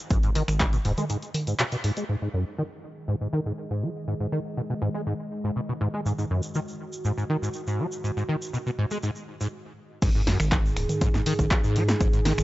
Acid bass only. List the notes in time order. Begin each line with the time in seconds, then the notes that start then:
0.11 G#2
0.23 G#2
0.35 D#3
0.60 B2
0.73 B2
0.85 G#2
0.98 G#3
1.10 G#2
1.47 G#2
1.59 B2
1.72 B2
1.84 G#2
1.97 G#3
2.09 G#2
2.22 G#2
2.34 F#2
2.58 D#3
3.08 G#2
3.21 G#2
3.33 D#3
3.46 G#2
3.70 G#2
3.82 F#3
4.07 G#2
4.20 G#2
4.32 D#3
4.57 B2
4.70 B2
4.82 G#2
4.94 G#3
5.06 G#2
5.44 G#2
5.56 B2
5.69 B2
5.81 G#2
5.94 G#3
6.06 G#2
6.18 G#2
6.30 F#2
6.55 D#3
7.05 G#2
7.18 G#2
7.29 D#3
7.42 G#2
7.67 G#2
7.79 F#3
8.04 G#2
8.17 G#2
8.29 D#3
8.53 B2
8.66 B2
8.78 G#2
8.91 G#3
9.03 G#2
9.41 G#2
10.02 G#2
10.15 G#2
10.27 F#2
10.52 D#3
11.01 G#2
11.14 G#2
11.26 D#3
11.39 G#2
11.64 G#2
11.76 F#3
12.01 G#2
12.13 G#2
12.25 D#3